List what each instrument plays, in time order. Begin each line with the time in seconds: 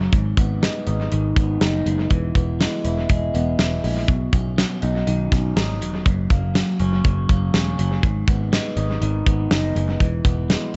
Already playing: clean electric guitar F#2 C#3 F#3 A#3 C#4
0.12 picked electric bass G#1, clean electric guitar G#2, kick, closed hi-hat
0.37 picked electric bass G#1, clean electric guitar B3, kick, closed hi-hat
0.62 clean electric guitar G#3, snare, closed hi-hat
0.87 picked electric bass G#1, clean electric guitar D#4, closed hi-hat
1.12 picked electric bass G#1, clean electric guitar D#3, closed hi-hat
1.36 picked electric bass G#1, clean electric guitar B3, kick, closed hi-hat
1.61 picked electric bass F#1, clean electric guitar D#4, snare, closed hi-hat
1.86 picked electric bass F#1, clean electric guitar G#3, closed hi-hat
2.10 picked electric bass E1, clean electric guitar E3, kick, closed hi-hat
2.35 picked electric bass E1, clean electric guitar B3, kick, closed hi-hat
2.60 clean electric guitar G#3, snare, closed hi-hat
2.85 picked electric bass E1, clean electric guitar E4, closed hi-hat
3.09 picked electric bass E1, clean electric guitar G#3, kick, closed hi-hat
3.34 picked electric bass E1, clean electric guitar B3, closed hi-hat
3.59 picked electric bass E1, clean electric guitar E4, snare, closed hi-hat
3.83 picked electric bass A#1, clean electric guitar G#3, open hi-hat
4.08 picked electric bass B1, clean electric guitar B2, kick, closed hi-hat
4.33 picked electric bass B1, clean electric guitar C#4, kick, closed hi-hat
4.58 clean electric guitar F#3, snare, closed hi-hat
4.82 picked electric bass B1, clean electric guitar D#4, closed hi-hat
5.07 picked electric bass B1, clean electric guitar D#3, closed hi-hat
5.32 picked electric bass B1, clean electric guitar C#4, kick, snare, closed hi-hat
5.56 picked electric bass G#1, clean electric guitar D#4, snare, closed hi-hat
5.81 picked electric bass E1, clean electric guitar F#3, closed hi-hat
6.06 picked electric bass F#1, clean electric guitar F#2, kick, closed hi-hat
6.30 picked electric bass F#1, clean electric guitar A#3, kick, closed hi-hat
6.55 clean electric guitar F#3, snare, closed hi-hat
6.80 picked electric bass F#1, clean electric guitar C#4, closed hi-hat
7.04 picked electric bass F#1, clean electric guitar C#3, kick, closed hi-hat
7.29 picked electric bass F#1, clean electric guitar A#3, kick, closed hi-hat
7.54 picked electric bass E1, clean electric guitar C#4, snare, closed hi-hat
7.78 picked electric bass F#1, clean electric guitar F#3, closed hi-hat
8.03 picked electric bass G#1, clean electric guitar G#2, kick, closed hi-hat
8.28 picked electric bass G#1, clean electric guitar B3, kick, closed hi-hat
8.52 clean electric guitar G#3, snare, closed hi-hat
8.77 picked electric bass G#1, clean electric guitar D#4, closed hi-hat
9.01 picked electric bass G#1, clean electric guitar D#3, closed hi-hat
9.26 picked electric bass G#1, clean electric guitar B3, kick, closed hi-hat
9.51 picked electric bass F#1, clean electric guitar D#4, snare, closed hi-hat
9.76 picked electric bass F#1, clean electric guitar G#3, closed hi-hat
10.00 picked electric bass E1, clean electric guitar E3, kick, closed hi-hat
10.25 picked electric bass E1, clean electric guitar B3, kick, closed hi-hat
10.50 clean electric guitar G#3, snare, closed hi-hat